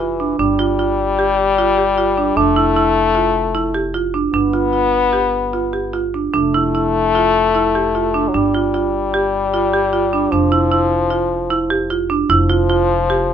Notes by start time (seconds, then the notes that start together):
Already playing: F1 E3
0.00 F4
0.20 D4
0.39 G1 G3 D4
0.59 F4
0.79 F4
1.19 G4
1.58 F4
1.78 G4
1.98 F4
2.17 D4
2.36 F1 A3 D4
2.56 E4
2.76 E4
3.15 F4
3.55 E4
3.74 G4
3.94 F4
4.14 D4
4.33 G1 B3 D4
4.53 F4
4.73 F4
5.13 G4
5.53 F4
5.73 G4
5.94 F4
6.14 D4
6.34 F1 A3 D4
6.54 E4
6.75 E4
7.15 F4
7.55 E4
7.75 G4
7.95 F4
8.14 D4
8.28 F#3
8.34 G1 G3 D4
8.54 F4
8.74 F4
9.14 G4
9.54 F4
9.73 G4
9.93 F4
10.13 D4
10.31 F1 F3 D4
10.52 E4
10.72 E4
11.10 F4
11.50 E4
11.70 G4
11.90 F4
12.10 D4
12.29 F1 F3 E4
12.50 F4
12.70 F4
13.10 G4